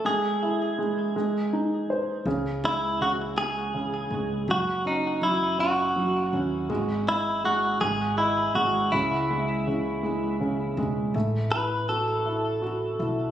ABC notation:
X:1
M:6/8
L:1/8
Q:3/8=54
K:C#m
V:1 name="Clean electric guitar"
G3 z3 | z E F G3 | F D E F2 z | z E F G E F |
E4 z2 | z B A4 |]
V:2 name="Grand piano" clef=bass
G, E G, G, D ^B | C, G, C, G, C, G, | F, C F, C F, C | G, d G, G, d G, |
C, G, C, G, C, G, | A, E F E F E |]
V:3 name="Upright bass" clef=bass
z6 | C,,4- C,, C,, | F,,,4- F,,, D,, | G,,,3 G,,,2 G,,, |
C,,4- C,, E,,, | A,,,4- A,,, B,,, |]